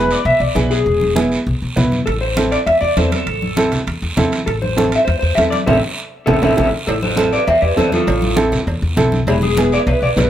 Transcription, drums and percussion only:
0.11 short guiro
0.25 high conga, long guiro
0.56 high conga, short guiro
0.71 short guiro
0.86 high conga, long guiro
1.01 high conga
1.16 high conga, short guiro
1.32 short guiro
1.47 high conga, long guiro
1.77 high conga, low conga, short guiro
1.92 high conga, short guiro
2.07 high conga, high timbale, long guiro
2.37 high conga, high timbale, short guiro
2.52 high timbale, short guiro
2.67 high conga, high timbale, long guiro
2.97 high conga, high timbale, low timbale, short guiro
3.12 high conga, high timbale, short guiro
3.27 high conga, high timbale, long guiro
3.42 high conga
3.57 high conga, high timbale, short guiro
3.72 low conga, high timbale, short guiro
3.87 high conga, high timbale, long guiro
4.17 high conga, low conga, high timbale, short guiro
4.32 high timbale, short guiro
4.47 high conga, high timbale, long guiro
4.62 high conga
4.78 high conga, high timbale, short guiro
4.92 high timbale, short guiro
5.07 high conga, high timbale, long guiro
5.38 high conga, high timbale, low timbale, short guiro
5.52 high conga, high timbale, short guiro
5.67 low conga, high timbale, long guiro
6.27 low conga, high timbale, long guiro
6.42 low conga, high timbale, long guiro
6.57 low conga, high timbale, long guiro
6.88 cowbell, high conga, long guiro
7.02 high conga
7.17 cowbell, high conga, short guiro
7.33 short guiro
7.47 cowbell, high conga, long guiro
7.77 cowbell, high conga, short guiro
7.92 high conga, short guiro
8.07 cowbell, high conga, long guiro
8.22 high conga
8.37 cowbell, high conga, short guiro
8.52 low conga, short guiro
8.67 cowbell, high conga, long guiro
8.97 cowbell, high conga, low conga, short guiro
9.12 high conga, short guiro
9.27 cowbell, high conga, long guiro
9.42 high conga
9.57 cowbell, high conga, short guiro
9.72 short guiro
9.87 cowbell, high conga, long guiro
10.17 cowbell, high conga, low timbale, short guiro

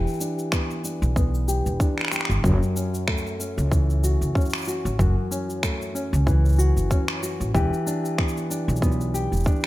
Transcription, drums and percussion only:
0.07 cabasa
0.09 cabasa
0.11 cabasa
0.13 cabasa
0.15 cabasa
0.17 cabasa
0.19 cabasa
0.21 cabasa
0.39 cabasa
0.52 finger snap, kick, cabasa
0.71 cabasa
0.85 cabasa
1.03 cabasa
1.16 kick, cabasa
1.34 cabasa
1.49 cabasa
1.66 cabasa
1.80 kick, cabasa
1.98 finger snap, cabasa
2.01 finger snap
2.05 finger snap, cabasa
2.08 finger snap
2.12 finger snap, cabasa
2.16 finger snap, cabasa
2.21 finger snap
2.25 finger snap
2.31 cabasa
2.44 kick, cabasa
2.63 cabasa
2.77 cabasa
2.94 cabasa
3.08 finger snap, kick
3.18 cabasa
3.27 cabasa
3.40 cabasa
3.58 cabasa
3.72 kick, cabasa
3.90 cabasa
4.04 cabasa
4.22 cabasa
4.35 kick, cabasa
4.41 cabasa
4.45 cabasa
4.50 finger snap, cabasa
4.54 cabasa
4.58 cabasa
4.61 cabasa
4.65 cabasa
4.68 cabasa
4.86 cabasa
4.99 kick, cabasa
5.32 cabasa
5.50 cabasa
5.63 finger snap, kick, cabasa
5.82 cabasa
5.96 cabasa
6.14 cabasa
6.27 kick, cabasa
6.45 cabasa
6.49 cabasa
6.52 cabasa
6.56 cabasa
6.59 cabasa
6.77 cabasa
6.91 kick, cabasa
7.08 finger snap, cabasa
7.23 cabasa
7.41 cabasa
7.55 kick, cabasa
7.73 cabasa
7.87 cabasa
8.05 cabasa
8.18 finger snap, kick
8.28 cabasa
8.37 cabasa
8.51 cabasa
8.69 cabasa
8.76 cabasa
8.82 kick, cabasa
8.92 cabasa
9.01 cabasa
9.15 cabasa
9.33 cabasa
9.36 cabasa
9.40 cabasa
9.44 kick, cabasa
9.47 cabasa
9.56 cabasa
9.60 cabasa

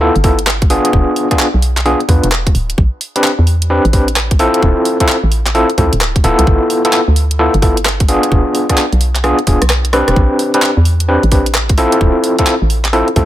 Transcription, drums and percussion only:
0.16 closed hi-hat
0.24 kick, open hi-hat
0.39 closed hi-hat
0.47 cross-stick, clap
0.62 kick, closed hi-hat
0.70 open hi-hat
0.85 closed hi-hat
0.93 kick
1.16 open hi-hat
1.31 kick, cross-stick, closed hi-hat
1.39 clap
1.62 open hi-hat
1.77 clap, closed hi-hat
1.86 open hi-hat
2.00 closed hi-hat
2.09 kick, open hi-hat
2.24 closed hi-hat
2.32 cross-stick, clap
2.47 kick, closed hi-hat
2.55 open hi-hat
2.70 closed hi-hat
2.78 kick
3.01 open hi-hat
3.16 closed hi-hat
3.24 clap
3.47 open hi-hat
3.62 closed hi-hat
3.85 closed hi-hat
3.93 kick, open hi-hat
4.08 closed hi-hat
4.16 cross-stick, clap
4.31 kick, closed hi-hat
4.39 open hi-hat
4.54 closed hi-hat
4.62 kick
4.85 open hi-hat
5.00 kick, closed hi-hat
5.09 clap
5.32 open hi-hat
5.47 clap, closed hi-hat
5.55 open hi-hat
5.70 closed hi-hat
5.78 kick, open hi-hat
5.93 closed hi-hat
6.01 cross-stick, clap
6.16 kick, closed hi-hat
6.24 open hi-hat
6.39 closed hi-hat
6.47 kick
6.70 open hi-hat
6.85 closed hi-hat
6.93 clap
7.16 open hi-hat
7.31 closed hi-hat
7.54 closed hi-hat
7.62 kick, open hi-hat
7.77 closed hi-hat
7.85 cross-stick, clap
8.00 kick, closed hi-hat
8.08 open hi-hat
8.23 closed hi-hat
8.32 kick
8.55 open hi-hat
8.70 kick, cross-stick, closed hi-hat
8.78 clap
8.93 closed hi-hat
9.01 open hi-hat
9.16 clap, closed hi-hat
9.24 cross-stick, open hi-hat
9.39 closed hi-hat
9.47 kick, open hi-hat
9.62 cross-stick, closed hi-hat
9.70 cross-stick, clap
9.85 closed hi-hat
9.93 cross-stick, open hi-hat
10.08 cross-stick, closed hi-hat
10.16 kick
10.39 open hi-hat
10.54 closed hi-hat
10.62 clap
10.85 open hi-hat
11.00 closed hi-hat
11.23 closed hi-hat
11.32 kick, open hi-hat
11.46 closed hi-hat
11.55 cross-stick, clap
11.69 kick, closed hi-hat
11.78 open hi-hat
11.92 closed hi-hat
12.01 kick
12.24 open hi-hat
12.39 kick, closed hi-hat
12.47 clap
12.70 open hi-hat
12.85 clap, closed hi-hat
12.93 open hi-hat
13.08 closed hi-hat
13.16 kick, open hi-hat

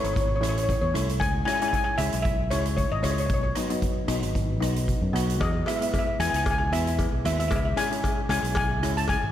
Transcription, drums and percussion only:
0.04 closed hi-hat
0.16 kick, closed hi-hat
0.43 cross-stick, closed hi-hat
0.58 closed hi-hat
0.69 kick, closed hi-hat
0.95 cross-stick, closed hi-hat
1.09 closed hi-hat
1.21 kick, closed hi-hat
1.48 cross-stick, closed hi-hat
1.62 closed hi-hat
1.73 kick, closed hi-hat
1.98 cross-stick, closed hi-hat
2.12 closed hi-hat
2.25 kick, closed hi-hat
2.51 cross-stick, closed hi-hat
2.66 closed hi-hat
2.78 kick, closed hi-hat
3.04 cross-stick, closed hi-hat
3.18 closed hi-hat
3.29 kick, closed hi-hat
3.55 cross-stick, closed hi-hat
3.70 closed hi-hat
3.82 kick, closed hi-hat
4.08 cross-stick, closed hi-hat
4.23 closed hi-hat
4.35 kick, closed hi-hat
4.62 cross-stick, closed hi-hat
4.76 closed hi-hat
4.88 kick, closed hi-hat
5.16 cross-stick, closed hi-hat
5.30 closed hi-hat
5.41 kick, closed hi-hat, cowbell
5.66 cross-stick, closed hi-hat, cowbell
5.82 closed hi-hat
5.94 kick, closed hi-hat, cowbell
6.20 cross-stick, closed hi-hat
6.34 closed hi-hat
6.46 kick, closed hi-hat, cowbell
6.73 cross-stick, closed hi-hat
6.87 closed hi-hat
6.99 kick, closed hi-hat, cowbell
7.25 cross-stick, closed hi-hat
7.40 closed hi-hat
7.51 kick, closed hi-hat, cowbell
7.77 cross-stick, closed hi-hat, cowbell
7.92 closed hi-hat
8.04 kick, closed hi-hat, cowbell
8.29 cross-stick, closed hi-hat, cowbell
8.45 closed hi-hat
8.55 kick, closed hi-hat, cowbell
8.83 cross-stick, closed hi-hat
8.98 closed hi-hat
9.08 kick, closed hi-hat, cowbell

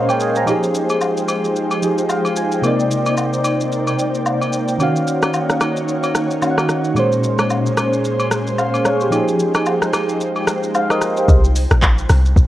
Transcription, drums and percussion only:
0.09 high agogo, shaker
0.20 shaker
0.35 shaker
0.47 high agogo, shaker
0.63 shaker
0.74 shaker
0.89 high agogo, shaker
1.01 low woodblock, shaker
1.17 shaker
1.28 high agogo, shaker
1.44 shaker
1.56 shaker
1.71 high agogo, shaker
1.83 shaker
1.98 shaker
2.10 low woodblock, shaker
2.25 high agogo, shaker
2.36 shaker
2.52 shaker
2.64 high agogo, shaker
2.80 shaker
2.91 shaker
3.06 high agogo, shaker
3.17 low woodblock, shaker
3.34 shaker
3.45 high agogo, shaker
3.61 shaker
3.72 shaker
3.87 high agogo, shaker
3.99 shaker
4.15 shaker
4.26 low woodblock, shaker
4.42 high agogo, shaker
4.53 shaker
4.68 shaker
4.80 high agogo, shaker
4.96 shaker
5.07 shaker
5.22 cross-stick, high agogo, shaker
5.34 low woodblock, shaker
5.50 cross-stick, shaker
5.61 cross-stick, high agogo, shaker
5.77 shaker
5.88 shaker
6.03 high agogo, shaker
6.15 cross-stick, shaker
6.31 shaker
6.42 low woodblock, shaker
6.58 cross-stick, high agogo, shaker
6.69 cross-stick, shaker
6.84 shaker
6.96 high agogo, shaker
7.12 shaker
7.23 shaker
7.38 cross-stick, high agogo, shaker
7.50 low woodblock, shaker
7.66 shaker
7.77 cross-stick, high agogo, shaker
7.93 shaker
8.05 shaker
8.20 high agogo, shaker
8.31 cross-stick, shaker
8.47 shaker
8.58 low woodblock, shaker
8.74 high agogo, shaker
8.85 cross-stick, shaker
9.00 shaker
9.12 high agogo, shaker
9.28 shaker
9.40 shaker
9.54 cross-stick, high agogo, shaker
9.66 low woodblock, shaker
9.82 cross-stick, shaker
9.93 cross-stick, high agogo, shaker
10.09 shaker
10.21 shaker
10.36 high agogo, shaker
10.47 cross-stick, shaker
10.63 shaker
10.75 low woodblock, shaker
10.90 cross-stick, high agogo, shaker
11.01 cross-stick, shaker
11.17 shaker
11.29 kick, shaker
11.45 shaker
11.56 open hi-hat, shaker
11.71 cross-stick, shaker
11.82 kick, clap, shaker
11.98 shaker
12.09 cross-stick, open hi-hat, shaker
12.25 shaker
12.36 kick, shaker

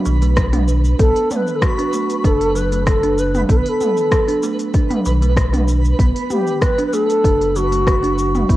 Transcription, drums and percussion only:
0.06 shaker
0.22 open hi-hat, shaker
0.37 kick, cross-stick, open hi-hat, shaker
0.53 mid tom, open hi-hat, shaker
0.68 shaker
0.84 shaker
0.99 kick, open hi-hat, shaker
1.16 open hi-hat, shaker
1.31 mid tom, shaker
1.47 shaker
1.62 kick, cross-stick, open hi-hat, shaker
1.79 open hi-hat, shaker
1.93 shaker
2.10 open hi-hat, shaker
2.24 kick, open hi-hat, shaker
2.41 open hi-hat, shaker
2.56 shaker
2.72 open hi-hat, shaker
2.87 kick, cross-stick, open hi-hat, shaker
3.03 open hi-hat, shaker
3.18 shaker
3.35 mid tom, shaker
3.49 kick, open hi-hat, shaker
3.66 open hi-hat, shaker
3.81 mid tom, shaker
3.97 shaker
4.12 kick, cross-stick, open hi-hat, shaker
4.28 open hi-hat, shaker
4.43 shaker
4.59 open hi-hat, shaker
4.74 kick, open hi-hat, shaker
4.91 mid tom, open hi-hat, shaker
5.05 shaker
5.22 open hi-hat, shaker
5.37 kick, cross-stick, open hi-hat, shaker
5.54 mid tom, open hi-hat, shaker
5.68 shaker
5.85 shaker
5.99 kick, open hi-hat, shaker
6.16 open hi-hat, shaker
6.30 mid tom, shaker
6.47 shaker
6.62 kick, cross-stick, open hi-hat, shaker
6.78 open hi-hat, shaker
6.93 shaker
7.10 open hi-hat, shaker
7.24 kick, open hi-hat, shaker
7.41 open hi-hat, shaker
7.56 shaker
7.72 open hi-hat, shaker
7.87 kick, cross-stick, open hi-hat, shaker
8.04 open hi-hat, shaker
8.18 shaker
8.35 mid tom, shaker
8.49 kick, open hi-hat, shaker

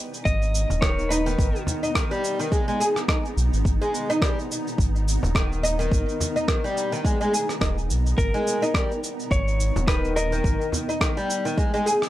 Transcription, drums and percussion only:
0.14 shaker
0.25 kick, shaker
0.42 shaker
0.55 shaker
0.70 frame drum, shaker
0.82 kick, cross-stick, shaker
0.99 shaker
1.11 shaker
1.27 shaker
1.39 kick, shaker
1.55 shaker
1.67 frame drum, shaker
1.84 shaker
1.95 kick, cross-stick, shaker
2.12 shaker
2.24 shaker
2.40 shaker
2.52 kick, shaker
2.68 shaker
2.81 shaker
2.96 cross-stick, shaker
3.08 kick, cross-stick, shaker
3.25 shaker
3.38 shaker
3.53 shaker
3.65 kick, shaker
3.82 shaker
3.94 shaker
4.10 shaker
4.22 kick, cross-stick, shaker
4.39 shaker
4.51 shaker
4.67 shaker
4.78 kick, shaker
4.96 shaker
5.08 shaker
5.23 frame drum, shaker
5.35 kick, cross-stick, shaker
5.52 shaker
5.64 shaker
5.80 shaker
5.92 kick, shaker
6.09 shaker
6.21 frame drum, shaker
6.37 shaker
6.48 kick, cross-stick, shaker
6.65 shaker
6.77 shaker
6.93 shaker
7.05 kick, shaker
7.21 shaker
7.34 shaker
7.49 cross-stick, shaker
7.61 kick, cross-stick, shaker
7.78 shaker
7.90 shaker
8.06 shaker
8.18 kick, shaker
8.35 shaker
8.47 shaker
8.63 shaker
8.74 kick, cross-stick, shaker
8.91 shaker
9.04 shaker
9.20 shaker
9.31 kick, shaker
9.48 shaker
9.60 shaker
9.76 frame drum, shaker
9.88 kick, cross-stick, shaker
10.04 shaker
10.17 shaker
10.33 shaker
10.44 kick, shaker
10.61 shaker
10.72 frame drum, shaker
10.90 shaker
11.01 kick, cross-stick, shaker
11.18 shaker
11.30 shaker
11.46 shaker
11.58 kick, shaker
11.75 shaker
11.87 shaker
12.02 cross-stick, shaker

